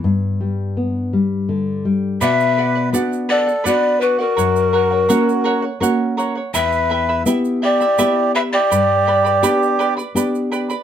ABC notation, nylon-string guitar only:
X:1
M:3/4
L:1/8
Q:1/4=83
K:Bm
V:1 name="Nylon-string guitar"
G,, G, B, G, D, G, | B,,2 [B,DF]2 [B,DF]2 | F,,2 [^A,CF]2 [A,CF]2 | E,,2 [B,EG]2 [B,EG]2 |
G,,2 [B,DG]2 [B,DG]2 |]